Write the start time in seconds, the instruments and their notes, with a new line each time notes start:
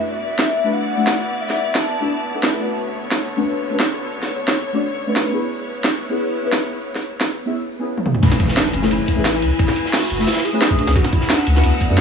Already playing: synth stab A3 D4 E4 F#4 B4, string section F#4
0.05 string section B3 E4 D5, soft synth lead E5
0.39 snare
0.64 synth stab A3 D4 E4 F#4 B4
0.73 soft synth lead F#5
0.97 synth stab A3 D4 E4 F#4 B4
1.07 snare
1.41 soft synth lead E5
1.50 snare
1.75 soft synth lead A5, snare
2.00 synth stab A3 D4 E4 F#4 E5
2.34 synth stab A3 D4 E4 F#4 B4
2.43 snare
2.51 synth stab A3 D4 E4 F#4 B4
2.58 synth stab A3 C#4 D4 F#4 B4
2.77 string section D3 A4 C#5
3.11 snare
3.36 synth stab A3 C#4 D4 F#4 B4
3.70 synth stab A3 C#4 D4 F#4 B4
3.80 snare
4.23 snare
4.48 snare
4.73 synth stab A3 C#4 D4 F#4 D5
5.07 synth stab A3 C#4 D4 F#4 B4
5.16 snare
5.24 synth stab A3 C#4 D4 F#4 B4
5.31 synth stab B3 C#4 E4 G#4 B4, string section B3 E4
5.84 snare
6.09 synth stab B3 C#4 E4 G#4 B4
6.42 synth stab B3 C#4 E4 G#4 B4
6.52 snare
6.95 snare
7.21 snare
7.45 synth stab B3 C#4 E4 G#4 E5
7.79 synth stab B3 C#4 E4 G#4 B4
7.98 high tom
8.06 mid tom
8.15 mid tom
8.21 synth stab A3 C#4 E4 G#4 B4, string section B4 G#5 E6, kick, closed hi-hat, crash, ride, impact
8.32 snare
8.40 kick, closed hi-hat, ride
8.48 snare
8.57 soft synth lead D4, snare, closed hi-hat, ride
8.73 sub bass F#1, soft synth lead C#4, closed hi-hat, ride
8.82 synth stab A3 C#4 E4 G#4 B4, snare
8.91 sub bass F#1, soft synth lead E4, closed hi-hat, ride
9.08 kick, closed hi-hat, ride
9.15 sub bass A1, synth stab A3 C#4 E4 G#4 B4
9.25 snare, closed hi-hat, ride
9.34 snare
9.42 sub bass C#2, closed hi-hat, ride
9.59 soft synth lead E4, kick, closed hi-hat, ride
9.68 snare
9.76 closed hi-hat, ride
9.86 snare
9.93 soft synth lead F#4, snare, closed hi-hat, open hi-hat
10.02 snare
10.10 sub bass F#1, soft synth lead F#4, closed hi-hat, ride
10.18 synth stab A3 C#4 E4 G#4 E5, snare
10.27 soft synth lead E4, snare, closed hi-hat, ride
10.32 snare, ride
10.37 snare, ride
10.44 soft synth lead G#4, closed hi-hat, ride
10.52 synth stab A3 C#4 E4 G#4 B4
10.61 snare, closed hi-hat, ride
10.69 synth stab A3 C#4 E4 G#4 B4, kick, snare
10.77 synth stab A3 D4 E4 F#4 B4, closed hi-hat, ride
10.87 sub bass C#2, snare
10.95 soft synth lead F#4, string section B4 F#5, kick, closed hi-hat, ride
11.04 soft synth lead F#4, snare
11.12 soft synth lead E4, kick, closed hi-hat, ride
11.21 snare
11.29 soft synth lead D4, snare, closed hi-hat, ride
11.47 sub bass D2, soft synth lead C#4, closed hi-hat, ride
11.55 synth stab A3 D4 E4 F#4 B4, snare
11.63 sub bass D2, soft synth lead B3, closed hi-hat, ride
11.81 kick, closed hi-hat, ride
11.88 sub bass F#2, synth stab A3 D4 E4 F#4 B4
11.97 ride